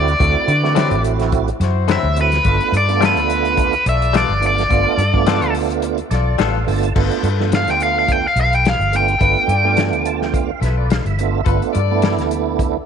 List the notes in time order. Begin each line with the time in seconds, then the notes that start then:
Already playing: D2 A3 C4 E4 F#4 D5
0.08 closed hi-hat
0.19 D2 A3 C4 E4 F#4 A4, kick, closed hi-hat
0.48 D3 E4 F#4 B4, closed hi-hat
0.63 A3 C4 E4 F#4, snare
0.75 D3 F#3 C4 E4, snare, closed hi-hat
0.91 A1, closed hi-hat
1.04 closed hi-hat
1.19 snare, closed hi-hat
1.32 kick, closed hi-hat
1.48 closed hi-hat
1.60 F#2 E4 F#4 C5, snare, closed hi-hat
1.88 D3 F#3 C4 E4 E5, snare, closed hi-hat
2.03 D2
2.16 A3 C4 E4 F#4, closed hi-hat
2.21 B4
2.32 snare, closed hi-hat
2.44 G1 A3 B3 D4 F4 A4 B4, kick, closed hi-hat
2.60 closed hi-hat
2.72 G2 F4 A4 D5, closed hi-hat
2.77 D5
2.88 A3 B3 D4 F4, closed hi-hat
3.01 G3 B3 F4 A4, snare, closed hi-hat
3.05 B4
3.16 D2, closed hi-hat
3.30 closed hi-hat
3.45 closed hi-hat
3.57 kick, closed hi-hat
3.73 closed hi-hat
3.85 B1 F4 A4 D5 E5, closed hi-hat
4.02 closed hi-hat
4.13 G3 B3 F4 A4 D5, snare, closed hi-hat
4.29 G1
4.41 A3 B3 D4 F4, closed hi-hat
4.46 D5
4.58 snare, closed hi-hat
4.69 G1 A3 B3 D4 F4 A4 D5, kick, closed hi-hat
4.98 G2 F4 A4 D5, closed hi-hat
5.13 A3 B3 D4 F4, kick
5.26 G3 B3 F4 A4, snare, closed hi-hat
5.42 D2, closed hi-hat
5.54 open hi-hat
5.70 closed hi-hat
5.82 closed hi-hat
5.98 closed hi-hat
6.11 B1 F4 A4 D5, snare, closed hi-hat
6.39 A1 G3 B3 F4 A4 F5, snare, closed hi-hat
6.66 G1 A3 B3 D4 F4 A5, open hi-hat
6.83 closed hi-hat
6.95 G1 A3 B3 D4 F4 A4 B4, kick, crash
7.11 closed hi-hat
7.23 G2 F4 A4 B4, closed hi-hat
7.40 A3 B3 D4 F4, snare
7.52 F5, snare, closed hi-hat
7.67 D2, snare, closed hi-hat
7.71 G5
7.80 F5, closed hi-hat
7.99 F5
8.08 G5, kick, closed hi-hat
8.27 F5
8.36 B1 F4 A4 B4, closed hi-hat
8.41 F5
8.53 G5, closed hi-hat
8.65 F5, snare, closed hi-hat
8.79 G1, closed hi-hat
8.92 A3 B3 D4 F4 G5, closed hi-hat
9.08 closed hi-hat
9.19 G1 A3 B3 D4 F4 A4 B4, kick, closed hi-hat
9.47 G2 F4 A4 D5, closed hi-hat
9.64 A3 B3 D4 F4
9.77 snare, closed hi-hat
9.92 D2, closed hi-hat
10.05 A5, closed hi-hat
10.22 G5, snare
10.34 F5, kick, closed hi-hat
10.59 B1 F4 A4 B4 E5, closed hi-hat
10.64 snare
10.77 D5
10.90 F5, snare, closed hi-hat
11.05 G1 E5, closed hi-hat
11.19 A3 B3 D4 F4, closed hi-hat
11.44 G1 F4 A4 B4, kick, closed hi-hat
11.48 A3 B3 D4 F4
11.62 closed hi-hat
11.72 G2 A4 D5, closed hi-hat
11.91 A3 B3 D4 E4
12.02 snare, closed hi-hat
12.18 D2, snare, closed hi-hat
12.31 closed hi-hat
12.59 kick, closed hi-hat